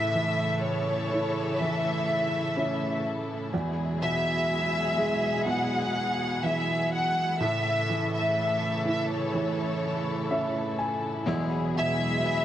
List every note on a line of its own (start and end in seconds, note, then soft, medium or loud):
0.00 3.49 A2 medium
0.00 3.49 C#3 medium
0.00 3.49 E3 medium
0.00 3.49 A3 medium
0.00 7.36 E4 medium
0.00 3.49 A4 medium
0.00 0.58 E5 medium
0.14 1.59 E3 soft
0.62 1.59 C#5 medium
1.12 3.01 E4 soft
1.58 3.49 E3 soft
1.58 3.04 E5 medium
2.57 3.50 C#4 soft
3.52 7.36 E2 medium
3.52 7.36 B2 medium
3.52 7.36 F#3 medium
3.52 7.36 G#3 medium
3.52 7.36 G#4 medium
4.02 5.45 B2 soft
4.02 5.43 E5 medium
4.98 6.88 G#3 soft
5.46 7.36 B2 soft
5.46 6.44 F#5 medium
6.43 7.37 E3 soft
6.43 6.93 E5 medium
6.93 7.37 F#5 medium
7.39 11.23 A2 medium
7.39 11.23 C#3 medium
7.39 11.23 E3 medium
7.39 11.23 A3 medium
7.39 12.45 E4 medium
7.39 11.23 A4 medium
7.39 8.13 E5 medium
7.89 9.33 E3 soft
8.14 8.82 E5 medium
8.85 10.75 E4 soft
8.85 9.09 E5 medium
9.12 10.52 C#5 medium
9.34 11.23 E3 soft
10.31 11.24 C#4 soft
10.31 10.76 E5 medium
10.79 11.24 G#5 medium
11.25 12.23 E2 medium
11.25 12.45 E2 medium
11.25 12.45 B2 medium
11.25 12.24 B2 medium
11.25 12.45 F#3 medium
11.25 12.21 F#3 medium
11.25 12.45 G#3 medium
11.25 12.23 G#3 medium
11.25 12.24 B3 medium
11.25 12.25 E4 medium
11.25 12.45 G#4 medium
11.76 12.45 B2 soft
11.76 12.45 E5 medium
12.22 12.45 F#3 soft
12.22 12.45 G#3 soft
12.22 12.45 B3 medium
12.22 12.45 E4 medium